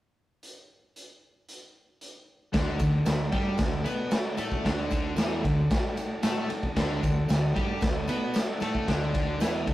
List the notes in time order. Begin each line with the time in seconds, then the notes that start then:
0.43 closed hi-hat
0.96 closed hi-hat
1.49 closed hi-hat
2.01 closed hi-hat
2.52 D2 D3 D4 F#4 A4 D5, kick, snare, ride, tambourine
2.79 D2 D3, kick, ride, tambourine
3.05 D2 D3, snare, ride, tambourine
3.31 G2 G3 G4, kick, ride, tambourine
3.58 D2 D3, kick, snare, ride, tambourine
3.84 B2 B3 B4, ride, tambourine
4.11 muted distorted electric guitar stroke, muted fretless electric bass stroke, snare, ride, tambourine
4.37 A2 A3 A4, ride, tambourine
4.52 kick
4.63 D2 D3 D4, kick, snare, ride, tambourine
4.91 kick, ride, tambourine
5.17 E2 E3 E4, snare, ride, tambourine
5.43 D2 D3, kick, ride, tambourine
5.70 kick, snare, ride, tambourine
5.97 ride, tambourine
6.23 A2 A3 A4 F#5, snare, ride, tambourine
6.48 A5, muted distorted electric guitar stroke, muted fretless electric bass stroke, ride
6.63 kick
6.76 D2 D3 D4 F#4 A4 D5, kick, snare, ride, tambourine
7.02 D2 D3, kick, ride, tambourine
7.28 D2 D3, snare, ride, tambourine
7.54 G2 G3 G4, kick, ride
7.81 D2 D3, kick, snare, ride, tambourine
8.08 B2 B3 B4, ride, tambourine
8.34 muted distorted electric guitar stroke, muted fretless electric bass stroke, snare, ride, tambourine
8.60 A2 A3 A4, ride, tambourine
8.75 kick
8.87 D2 D3 D4, kick, snare, ride, tambourine
9.14 kick, ride
9.40 E2 E3 E4, snare, ride, tambourine
9.67 D2 D3, kick, ride, tambourine